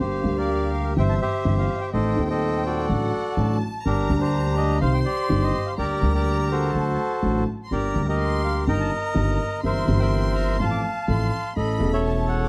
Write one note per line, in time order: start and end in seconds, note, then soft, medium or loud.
0.00 0.20 G1 soft
0.00 0.20 G2 soft
0.00 0.20 D3 soft
0.00 0.20 G3 soft
0.00 0.20 A#3 soft
0.00 0.20 G4 soft
0.00 0.37 G4 medium
0.00 0.37 C5 medium
0.00 0.92 F5 medium
0.23 0.93 D2 medium
0.23 0.93 D3 medium
0.23 0.93 G3 medium
0.23 0.93 A#3 soft
0.23 0.94 G4 medium
0.37 0.94 G4 soft
0.37 0.93 A#4 soft
0.37 0.70 D5 medium
0.74 0.84 F5 medium
0.96 1.17 G1 medium
0.96 1.17 G2 medium
0.96 1.17 E3 medium
0.96 1.17 G3 soft
0.96 1.17 C4 soft
0.96 1.17 G4 soft
0.96 1.21 C5 medium
0.96 1.89 E5 medium
0.96 1.20 E5 medium
0.96 1.03 G5 medium
1.09 1.14 A5 medium
1.21 1.90 G4 medium
1.21 1.90 C5 soft
1.21 1.55 E5 medium
1.45 1.65 G1 medium
1.45 1.65 G2 medium
1.45 1.65 E3 medium
1.45 1.65 G3 medium
1.45 1.65 C4 medium
1.45 1.65 G4 medium
1.58 1.80 F5 medium
1.81 1.86 G5 medium
1.93 2.14 A1 soft
1.93 2.14 A2 soft
1.93 2.13 D#3 soft
1.93 2.13 A3 soft
1.93 2.14 C4 soft
1.93 2.28 A4 medium
1.93 2.14 A4 soft
1.93 2.28 C5 medium
1.93 2.27 D#5 medium
1.93 2.89 G5 medium
2.15 2.86 D#1 medium
2.15 2.86 D#2 medium
2.15 2.85 D#3 medium
2.15 2.85 A3 medium
2.15 2.86 C4 medium
2.19 2.87 A4 medium
2.30 2.64 A4 soft
2.30 2.86 C5 soft
2.30 2.63 D#5 medium
2.65 3.58 F#4 medium
2.65 3.58 A4 soft
2.65 3.58 D5 medium
2.89 3.09 A1 medium
2.89 3.10 A1 medium
2.89 3.09 A2 medium
2.89 3.09 D3 medium
2.89 3.09 F#3 soft
2.89 3.10 A3 soft
2.89 3.10 F#4 medium
2.89 3.38 F#5 medium
3.36 3.58 A1 medium
3.36 3.58 A2 medium
3.36 3.58 D3 medium
3.36 3.58 F#3 soft
3.36 3.58 A3 medium
3.36 3.58 F#4 medium
3.36 3.85 A5 medium
3.85 4.06 G1 soft
3.85 4.06 G1 medium
3.85 4.06 G2 soft
3.85 4.06 D3 soft
3.85 4.06 G3 soft
3.85 4.06 A#3 soft
3.85 4.78 D4 medium
3.85 4.06 G4 soft
3.85 4.20 G4 soft
3.85 4.19 A#4 medium
3.85 4.82 A#5 medium
4.09 4.78 D2 medium
4.09 4.78 D3 medium
4.09 4.78 G3 medium
4.09 4.79 A#3 medium
4.09 4.79 G4 medium
4.21 4.78 G4 medium
4.21 4.55 C5 medium
4.57 4.80 D#5 medium
4.81 5.02 C2 medium
4.81 5.02 C3 medium
4.81 5.02 D#3 medium
4.81 5.02 G3 soft
4.81 5.02 C4 soft
4.81 5.02 G4 medium
4.81 5.74 C5 medium
4.81 4.93 F5 medium
4.81 5.73 C6 medium
4.94 5.00 G5 medium
5.05 5.74 G4 medium
5.05 5.43 D5 medium
5.29 5.50 G1 medium
5.29 5.50 G2 medium
5.29 5.50 D#3 medium
5.29 5.50 G3 medium
5.29 5.50 C4 medium
5.29 5.50 G4 medium
5.43 5.67 D#5 medium
5.66 5.72 F5 medium
5.77 5.98 D2 soft
5.77 5.99 D2 medium
5.77 5.98 D3 soft
5.77 5.98 G3 soft
5.77 5.98 A#3 soft
5.77 5.98 G4 soft
5.77 6.13 G4 medium
5.77 6.13 A#4 medium
5.77 6.12 D5 medium
5.77 6.70 A#5 medium
6.00 6.71 D2 medium
6.00 6.71 D3 medium
6.00 6.70 G3 medium
6.00 6.71 A#3 medium
6.00 6.72 G4 medium
6.14 6.71 G4 medium
6.14 6.71 A#4 medium
6.14 6.48 D5 medium
6.52 7.44 F#4 soft
6.52 7.44 A4 soft
6.52 7.44 C5 medium
6.73 6.95 D2 medium
6.73 6.95 D3 medium
6.73 6.95 F#3 soft
6.73 6.95 A3 soft
6.73 6.95 F#4 medium
6.73 7.47 A5 medium
7.22 7.43 A1 medium
7.22 7.43 A2 medium
7.22 7.43 D3 medium
7.22 7.43 F#3 soft
7.22 7.43 A3 medium
7.22 7.43 F#4 medium
7.64 7.71 C6 soft
7.70 7.91 G1 soft
7.70 7.92 G1 soft
7.70 7.92 G2 soft
7.70 7.92 D3 soft
7.70 7.92 G3 soft
7.70 7.92 A#3 soft
7.70 7.92 G4 soft
7.70 8.07 G4 soft
7.70 8.07 A#4 soft
7.70 8.05 D5 medium
7.70 8.19 A#5 medium
7.95 8.64 D2 medium
7.95 8.64 D3 medium
7.95 8.64 G3 soft
7.95 8.65 A#3 medium
7.95 8.65 G4 medium
8.09 8.65 G4 soft
8.09 8.65 A#4 soft
8.09 8.42 D#5 medium
8.18 8.64 C6 medium
8.44 8.55 F5 medium
8.67 8.88 G1 medium
8.67 8.88 G2 medium
8.67 8.88 D#3 soft
8.67 8.88 G3 soft
8.67 8.88 A#3 soft
8.67 8.88 G4 medium
8.67 9.60 A#4 medium
8.67 9.61 D#5 medium
8.67 8.79 G5 medium
8.67 9.60 A#5 medium
8.80 8.91 A5 medium
9.15 9.36 G1 medium
9.15 9.36 G2 medium
9.15 9.36 D#3 medium
9.15 9.36 G3 medium
9.15 9.36 A#3 medium
9.15 9.36 G4 medium
9.63 9.84 G1 soft
9.63 9.84 G2 soft
9.63 9.84 E3 soft
9.63 9.84 A#3 soft
9.63 9.84 C4 soft
9.63 9.84 G4 soft
9.63 10.00 A#4 soft
9.63 10.57 C5 soft
9.63 9.98 E5 medium
9.63 10.60 C6 medium
9.85 10.57 G1 medium
9.85 10.56 G2 medium
9.85 10.55 E3 medium
9.85 10.56 A#3 medium
9.85 10.57 C4 medium
9.90 10.57 G4 medium
10.00 10.57 A#4 medium
10.00 10.57 E5 soft
10.00 10.33 G5 medium
10.35 10.58 A#5 medium
10.59 10.80 A1 medium
10.59 10.80 A2 medium
10.59 10.81 F3 medium
10.59 10.81 A3 soft
10.59 10.81 C4 soft
10.59 10.81 A4 medium
10.59 11.53 F5 medium
10.59 11.08 A5 medium
10.59 11.53 A5 medium
10.59 10.65 C6 medium
10.71 10.82 D6 medium
11.08 11.28 A1 medium
11.08 11.29 A2 medium
11.08 11.28 F3 medium
11.08 11.28 A3 medium
11.08 11.29 C4 medium
11.08 11.29 A4 medium
11.08 11.53 C6 medium
11.56 11.77 A1 soft
11.56 11.77 A1 medium
11.56 11.76 A2 soft
11.56 11.76 E3 soft
11.56 11.76 A3 soft
11.56 11.77 C#4 soft
11.56 11.77 A4 soft
11.56 11.92 A4 medium
11.56 11.90 D#5 medium
11.56 12.01 B5 medium
11.78 12.48 E1 medium
11.78 12.49 E1 medium
11.78 12.48 E2 medium
11.78 12.48 E3 medium
11.78 12.48 A3 medium
11.78 12.49 C#4 medium
11.78 12.49 A4 medium
11.93 12.49 A4 medium
11.93 12.49 C#5 medium
11.93 12.26 E5 medium
12.04 12.42 A5 medium
12.28 12.49 F#5 medium
12.44 12.49 D6 medium